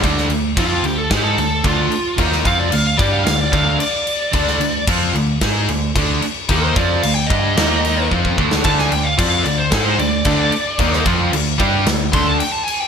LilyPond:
<<
  \new Staff \with { instrumentName = "Lead electric guitar" } { \time 4/4 \key d \minor \tempo 4 = 112 r4 f'8 g'16 a'16 g'16 a'8. f'4 | r8 f''16 d''16 f''16 f''16 d''16 f''16 f''16 d''16 f''8 d''4~ | d''4 r2. | a'16 c''16 d''8 f''16 g''16 ees''4. r4 |
a''16 gis''16 g''16 f''16 d''16 f''16 d''16 c''16 a'16 c''16 d''4.~ | d''8 r2 c'''16 a''16 g''16 a''16 gis''16 g''16 | }
  \new Staff \with { instrumentName = "Overdriven electric guitar" } { \time 4/4 \key d \minor <d a d'>8 <d a>8 <f c' f'>8 <d a>8 <gis ees' gis'>8 <d a>8 <d a d'>8 r8 | <ees bes ees'>8 <f c' f'>8 <d a>8 <g d' g'>8 <d a>8 <d a d'>8 r4 | <d a d'>8 <d a>8 <f c' f'>8 <d a>8 <gis ees' gis'>8 <d a>8 <d a d'>8 r8 | <ees bes ees'>8 <f c' f'>8 <d a>8 <g d' g'>8 <ees bes ees'>4 <f c' f'>8 <d a d'>8 |
<d a d'>8 <d a>8 <f c' f'>8 <d a>8 <gis ees' gis'>8 <d a>8 <d a d'>8 r8 | <ees bes ees'>8 <f c' f'>8 <d a>8 <g d' g'>8 <d a>8 <d a d'>8 r4 | }
  \new Staff \with { instrumentName = "Overdriven electric guitar" } { \time 4/4 \key d \minor <d a d'>8 <d a>8 <f c' f'>8 <d a>8 <gis ees' gis'>8 <d a>8 <d a d'>8 r8 | <ees bes ees'>8 <f c' f'>8 <d a>8 <g d' g'>8 <d a>8 <d a d'>8 r4 | <d a d'>8 <d a>8 <f c' f'>8 <d a>8 <gis ees' gis'>8 <d a>8 <d a d'>8 r8 | <ees bes ees'>8 <f c' f'>8 <d a>8 <g d' g'>8 <ees bes ees'>4 <f c' f'>8 <d a d'>8 |
<d a d'>8 <d a>8 <f c' f'>8 <d a>8 <gis ees' gis'>8 <d a>8 <d a d'>8 r8 | <ees bes ees'>8 <f c' f'>8 <d a>8 <g d' g'>8 <d a>8 <d a d'>8 r4 | }
  \new Staff \with { instrumentName = "Overdriven electric guitar" } { \time 4/4 \key d \minor r1 | r1 | r1 | r1 |
<d a d'>8 <d a>8 <f c' f'>8 <d a>8 <gis ees' gis'>8 <d a>8 <d a d'>8 r8 | <ees bes ees'>8 <f c' f'>8 <d a>8 <g d' g'>8 <d a>8 <d a d'>8 r4 | }
  \new Staff \with { instrumentName = "Picked electric bass" } { \clef bass \time 4/4 \key d \minor d,8 d,8 f,8 d,8 gis,8 d,8 d,8 r8 | ees,8 f,8 d,8 g,8 d,8 d,8 r4 | d,8 d,8 f,8 d,8 gis,8 d,8 d,8 r8 | ees,8 f,8 d,8 g,8 ees,4 f,8 d,8 |
d,8 d,8 f,8 d,8 gis,8 d,8 d,8 r8 | ees,8 f,8 d,8 g,8 d,8 d,8 r4 | }
  \new DrumStaff \with { instrumentName = "Drums" } \drummode { \time 4/4 <cymc bd>16 sn16 cymc8 <cymc bd>8 cymc8 <cymc bd sn>8 cymc8 <cymc bd>8 cymc8 | <cymc bd>16 sn16 <cymc bd>8 cymc8 <cymc bd>8 <cymc sn>8 <cymc bd>8 cymc8 cymc8 | <cymc bd>16 sn16 cymc8 <cymc bd>8 cymc8 <cymc bd sn>8 cymc8 <cymc bd>8 cymc8 | <cymc bd>8 <cymc bd>8 cymc8 <cymc bd>8 <cymc sn>8 cymc8 bd16 bd16 bd16 sn16 |
<cymc bd>16 sn16 cymc8 <cymc bd>8 cymc8 <cymc bd sn>8 cymc8 <cymc bd>8 cymc8 | <cymc bd>16 sn16 <cymc bd>8 cymc8 <cymc bd>8 <cymc sn>8 <cymc bd>8 cymc8 cymc8 | }
>>